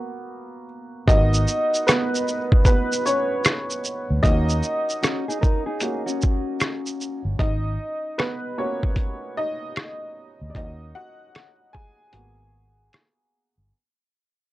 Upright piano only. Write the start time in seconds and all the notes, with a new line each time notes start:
Already playing: A#3 B3 F#4
1.08 B3 D#4 F#4 A#4 D#5
1.87 B3 B4
2.66 B3 B4
3.06 C#4 C#5
4.23 A#3 C#4 D#4 F#4 D#5
5.81 A#3 C#4 F#4
7.39 D#4 D#5
8.18 B3 B4
8.58 A#3 B3 C#4 F#4 C#5
9.37 D#4 D#5
10.50 D5
10.55 A#3 C#4 D#4 F#4 D#5
10.95 F#4 F#5
11.73 G#4 G#5
12.12 A#3 B3 F#4